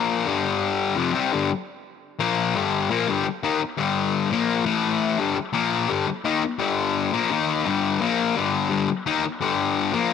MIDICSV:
0, 0, Header, 1, 3, 480
1, 0, Start_track
1, 0, Key_signature, -2, "minor"
1, 0, Tempo, 352113
1, 352, Time_signature, 4, 2, 24, 8
1, 13813, End_track
2, 0, Start_track
2, 0, Title_t, "Distorted electric guitar"
2, 0, Program_c, 0, 30
2, 0, Note_on_c, 0, 46, 93
2, 0, Note_on_c, 0, 53, 94
2, 0, Note_on_c, 0, 58, 93
2, 347, Note_off_c, 0, 46, 0
2, 353, Note_off_c, 0, 53, 0
2, 355, Note_off_c, 0, 58, 0
2, 362, Note_on_c, 0, 50, 101
2, 365, Note_on_c, 0, 43, 100
2, 375, Note_on_c, 0, 55, 109
2, 1307, Note_off_c, 0, 50, 0
2, 1308, Note_off_c, 0, 43, 0
2, 1314, Note_off_c, 0, 55, 0
2, 1314, Note_on_c, 0, 41, 99
2, 1327, Note_on_c, 0, 48, 100
2, 1338, Note_on_c, 0, 53, 97
2, 1526, Note_off_c, 0, 48, 0
2, 1542, Note_on_c, 0, 48, 94
2, 1544, Note_off_c, 0, 41, 0
2, 1546, Note_off_c, 0, 53, 0
2, 1551, Note_on_c, 0, 55, 89
2, 1559, Note_on_c, 0, 60, 97
2, 1778, Note_off_c, 0, 48, 0
2, 1782, Note_off_c, 0, 55, 0
2, 1786, Note_off_c, 0, 60, 0
2, 1794, Note_on_c, 0, 43, 89
2, 1811, Note_on_c, 0, 50, 101
2, 1818, Note_on_c, 0, 55, 94
2, 2023, Note_off_c, 0, 43, 0
2, 2032, Note_off_c, 0, 50, 0
2, 2036, Note_off_c, 0, 55, 0
2, 2987, Note_on_c, 0, 46, 92
2, 2997, Note_on_c, 0, 53, 111
2, 3003, Note_on_c, 0, 58, 90
2, 3460, Note_off_c, 0, 46, 0
2, 3465, Note_off_c, 0, 53, 0
2, 3468, Note_off_c, 0, 58, 0
2, 3482, Note_on_c, 0, 43, 94
2, 3494, Note_on_c, 0, 50, 82
2, 3498, Note_on_c, 0, 55, 89
2, 3944, Note_off_c, 0, 50, 0
2, 3949, Note_off_c, 0, 43, 0
2, 3949, Note_on_c, 0, 46, 101
2, 3956, Note_off_c, 0, 55, 0
2, 3964, Note_on_c, 0, 58, 115
2, 3966, Note_on_c, 0, 53, 97
2, 4182, Note_off_c, 0, 46, 0
2, 4190, Note_off_c, 0, 58, 0
2, 4191, Note_off_c, 0, 53, 0
2, 4195, Note_on_c, 0, 43, 94
2, 4207, Note_on_c, 0, 50, 89
2, 4216, Note_on_c, 0, 55, 107
2, 4408, Note_off_c, 0, 43, 0
2, 4431, Note_off_c, 0, 50, 0
2, 4436, Note_off_c, 0, 55, 0
2, 4678, Note_on_c, 0, 51, 87
2, 4680, Note_on_c, 0, 58, 91
2, 4687, Note_on_c, 0, 63, 90
2, 4907, Note_off_c, 0, 51, 0
2, 4909, Note_off_c, 0, 58, 0
2, 4912, Note_off_c, 0, 63, 0
2, 5143, Note_on_c, 0, 43, 74
2, 5161, Note_on_c, 0, 50, 93
2, 5164, Note_on_c, 0, 55, 87
2, 5862, Note_off_c, 0, 43, 0
2, 5871, Note_off_c, 0, 50, 0
2, 5873, Note_off_c, 0, 55, 0
2, 5881, Note_on_c, 0, 46, 89
2, 5898, Note_on_c, 0, 53, 95
2, 5900, Note_on_c, 0, 58, 111
2, 6336, Note_off_c, 0, 46, 0
2, 6341, Note_on_c, 0, 45, 92
2, 6348, Note_off_c, 0, 58, 0
2, 6349, Note_off_c, 0, 53, 0
2, 6354, Note_on_c, 0, 52, 98
2, 6354, Note_on_c, 0, 57, 98
2, 7063, Note_off_c, 0, 45, 0
2, 7063, Note_on_c, 0, 43, 91
2, 7069, Note_off_c, 0, 52, 0
2, 7069, Note_off_c, 0, 57, 0
2, 7076, Note_on_c, 0, 50, 88
2, 7088, Note_on_c, 0, 55, 98
2, 7295, Note_off_c, 0, 43, 0
2, 7310, Note_off_c, 0, 50, 0
2, 7316, Note_off_c, 0, 55, 0
2, 7536, Note_on_c, 0, 46, 80
2, 7548, Note_on_c, 0, 53, 97
2, 7559, Note_on_c, 0, 58, 88
2, 8016, Note_on_c, 0, 43, 94
2, 8020, Note_off_c, 0, 46, 0
2, 8026, Note_off_c, 0, 53, 0
2, 8032, Note_off_c, 0, 58, 0
2, 8037, Note_on_c, 0, 50, 99
2, 8041, Note_on_c, 0, 55, 106
2, 8260, Note_off_c, 0, 43, 0
2, 8271, Note_off_c, 0, 50, 0
2, 8272, Note_off_c, 0, 55, 0
2, 8515, Note_on_c, 0, 51, 86
2, 8521, Note_on_c, 0, 58, 88
2, 8529, Note_on_c, 0, 63, 110
2, 8750, Note_off_c, 0, 51, 0
2, 8753, Note_off_c, 0, 58, 0
2, 8757, Note_off_c, 0, 63, 0
2, 8977, Note_on_c, 0, 43, 83
2, 8993, Note_on_c, 0, 50, 92
2, 9005, Note_on_c, 0, 55, 88
2, 9700, Note_off_c, 0, 43, 0
2, 9708, Note_off_c, 0, 50, 0
2, 9714, Note_off_c, 0, 55, 0
2, 9717, Note_on_c, 0, 46, 97
2, 9720, Note_on_c, 0, 53, 95
2, 9728, Note_on_c, 0, 58, 107
2, 9950, Note_off_c, 0, 46, 0
2, 9952, Note_off_c, 0, 53, 0
2, 9956, Note_off_c, 0, 58, 0
2, 9966, Note_on_c, 0, 51, 89
2, 9969, Note_on_c, 0, 58, 93
2, 9970, Note_on_c, 0, 63, 101
2, 10425, Note_on_c, 0, 43, 88
2, 10434, Note_off_c, 0, 51, 0
2, 10436, Note_off_c, 0, 58, 0
2, 10437, Note_off_c, 0, 63, 0
2, 10440, Note_on_c, 0, 50, 90
2, 10444, Note_on_c, 0, 55, 94
2, 10902, Note_off_c, 0, 50, 0
2, 10903, Note_off_c, 0, 43, 0
2, 10907, Note_on_c, 0, 46, 84
2, 10911, Note_off_c, 0, 55, 0
2, 10916, Note_on_c, 0, 53, 85
2, 10930, Note_on_c, 0, 58, 92
2, 11384, Note_off_c, 0, 46, 0
2, 11388, Note_off_c, 0, 53, 0
2, 11394, Note_on_c, 0, 43, 86
2, 11395, Note_off_c, 0, 58, 0
2, 11409, Note_on_c, 0, 55, 91
2, 11415, Note_on_c, 0, 50, 84
2, 11840, Note_off_c, 0, 43, 0
2, 11855, Note_off_c, 0, 50, 0
2, 11856, Note_on_c, 0, 43, 96
2, 11868, Note_off_c, 0, 55, 0
2, 11871, Note_on_c, 0, 50, 91
2, 11884, Note_on_c, 0, 55, 105
2, 12095, Note_off_c, 0, 43, 0
2, 12105, Note_off_c, 0, 50, 0
2, 12112, Note_off_c, 0, 55, 0
2, 12351, Note_on_c, 0, 51, 78
2, 12352, Note_on_c, 0, 58, 88
2, 12358, Note_on_c, 0, 63, 103
2, 12584, Note_off_c, 0, 51, 0
2, 12585, Note_off_c, 0, 58, 0
2, 12588, Note_off_c, 0, 63, 0
2, 12821, Note_on_c, 0, 43, 76
2, 12837, Note_on_c, 0, 55, 91
2, 12838, Note_on_c, 0, 50, 92
2, 13527, Note_off_c, 0, 50, 0
2, 13533, Note_on_c, 0, 46, 83
2, 13538, Note_off_c, 0, 43, 0
2, 13538, Note_off_c, 0, 55, 0
2, 13543, Note_on_c, 0, 53, 96
2, 13550, Note_on_c, 0, 58, 96
2, 13813, Note_off_c, 0, 46, 0
2, 13813, Note_off_c, 0, 53, 0
2, 13813, Note_off_c, 0, 58, 0
2, 13813, End_track
3, 0, Start_track
3, 0, Title_t, "Muted distorted electric guitar strokes"
3, 4425, Note_on_c, 9, 29, 53
3, 4561, Note_off_c, 9, 29, 0
3, 4907, Note_on_c, 9, 29, 61
3, 5044, Note_off_c, 9, 29, 0
3, 7311, Note_on_c, 9, 29, 56
3, 7447, Note_off_c, 9, 29, 0
3, 8289, Note_on_c, 9, 29, 54
3, 8425, Note_off_c, 9, 29, 0
3, 8755, Note_on_c, 9, 29, 60
3, 8891, Note_off_c, 9, 29, 0
3, 12111, Note_on_c, 9, 29, 54
3, 12247, Note_off_c, 9, 29, 0
3, 12580, Note_on_c, 9, 29, 61
3, 12716, Note_off_c, 9, 29, 0
3, 13813, End_track
0, 0, End_of_file